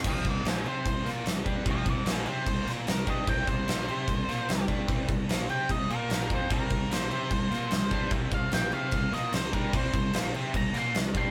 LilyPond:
<<
  \new Staff \with { instrumentName = "Lead electric guitar" } { \time 4/4 \key c \minor \tempo 4 = 149 <c'' f''>8 <c'' ees''>8 <ees' c''>8 c''4 r4. | <c'' f''>8 <c'' ees''>8 <ees' c''>8 c''4 r8 bes'8 ees''8 | g''8 c''2. r8 | r4. g''8 ees''8 bes'4 c''8 |
bes'4 c''2. | r8 f''8 g''8 f''4 ees''8 c''8 bes'8 | c''4 r4 bes''8 c'''8 r8 c'''8 | }
  \new Staff \with { instrumentName = "Distorted electric guitar" } { \clef bass \time 4/4 \key c \minor <c g c'>8 <c g>8 <bes, f bes>8 <c' g' c''>8 <c g>8 <bes f' bes'>8 <c g>8 <g d' g'>8 | <c g c'>8 <c g>8 <bes, f bes>8 <c' g' c''>8 <c g>8 <bes f' bes'>8 <c g>8 <g d' g'>8 | <c g c'>8 <c g>8 <bes, f bes>8 <c' g' c''>8 <c g>8 <bes f' bes'>8 <c g>8 <g d' g'>8 | <c g c'>8 <c g>8 <bes, f bes>8 <c' g' c''>8 <c g>8 <bes f' bes'>8 <bes, f bes>8 <f c' f'>8 |
<c g c'>8 <c g>8 <bes, f bes>8 <c' g' c''>8 <c g>8 <bes f' bes'>8 <c g>8 <g d' g'>8 | <c g c'>8 <c g>8 <bes, f bes>8 <c' g' c''>8 <c g>8 <bes f' bes'>8 <c g>8 <g d' g'>8 | <c g c'>8 <c g>8 <bes, f bes>8 <c' g' c''>8 <c g>8 <bes f' bes'>8 <c g>8 <g d' g'>8 | }
  \new Staff \with { instrumentName = "Picked electric bass" } { \clef bass \time 4/4 \key c \minor c,8 c,8 bes,,8 c8 c,8 bes,8 c,8 g,8 | c,8 c,8 bes,,8 c8 c,8 bes,8 c,8 g,8 | c,8 c,8 bes,,8 c8 c,8 bes,8 c,8 g,8 | c,8 c,8 bes,,8 c8 c,8 bes,8 bes,,8 f,8 |
c,8 c,8 bes,,8 c8 c,8 bes,8 c,8 g,8 | c,8 c,8 bes,,8 c8 c,8 bes,8 c,8 g,8 | c,8 c,8 bes,,8 c8 c,8 bes,8 c,8 g,8 | }
  \new DrumStaff \with { instrumentName = "Drums" } \drummode { \time 4/4 <cymc bd>8 <cymc bd>8 <cymc sn>8 cymc8 <cymc bd>8 <cymc sn>8 <cymc sn>8 <cymc bd>8 | <cymc bd>8 <cymc bd>8 <cymc sn>8 cymc8 <cymc bd>8 <cymc sn>8 <cymc sn>8 <cymc bd>8 | <cymc bd>8 <cymc bd>8 <cymc sn>8 cymc8 <cymc bd>8 <cymc sn>8 <cymc sn>8 <cymc bd>8 | <cymc bd>8 <cymc bd>8 <cymc sn>8 cymc8 <cymc bd>8 cymc8 <cymc sn>8 <cymc bd>8 |
<cymc bd>8 <cymc bd>8 <cymc sn>8 cymc8 <cymc bd>8 <cymc sn>8 <cymc sn>8 <cymc bd>8 | <cymc bd>8 <cymc bd>8 <cymc sn>8 cymc8 <cymc bd>8 <cymc sn>8 <cymc sn>8 <cymc bd>8 | <cymc bd>8 <cymc bd>8 <cymc sn>8 cymc8 <cymc bd>8 <cymc sn>8 <cymc sn>8 <cymc bd>8 | }
>>